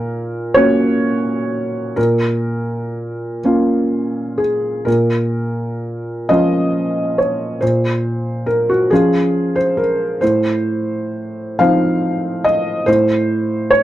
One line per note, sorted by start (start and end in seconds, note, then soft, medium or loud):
0.00 0.52 A#2 soft
0.00 0.55 A#4 medium
0.54 1.93 A#3 soft
0.54 1.93 C#4 soft
0.54 1.94 F#4 soft
0.54 1.97 C#5 medium
1.96 3.39 A#2 soft
1.96 4.39 A#4 medium
3.44 4.83 A#3 soft
3.44 4.83 C#4 soft
3.44 4.83 F4 soft
4.38 4.86 G#4 medium
4.85 6.25 A#2 soft
4.85 6.29 A#4 medium
6.29 7.58 F3 soft
6.29 7.58 C#4 soft
6.29 7.58 F4 soft
6.29 7.18 D#5 medium
7.18 7.62 C#5 soft
7.61 8.87 A#2 soft
7.61 8.47 C5 medium
8.46 8.69 A#4 medium
8.69 8.91 F#4 medium
8.90 10.18 F3 soft
8.90 10.18 C#4 soft
8.90 10.18 F4 soft
8.90 9.56 G#4 medium
9.56 9.78 C5 medium
9.77 10.21 A#4 medium
10.21 11.56 A2 soft
10.21 11.59 C5 medium
11.59 12.84 F3 soft
11.59 12.84 C4 soft
11.59 12.84 D#4 soft
11.59 12.46 F5 medium
12.44 12.87 D#5 medium
12.86 13.83 A2 medium
12.86 13.72 C5 medium
13.70 13.83 C#5 medium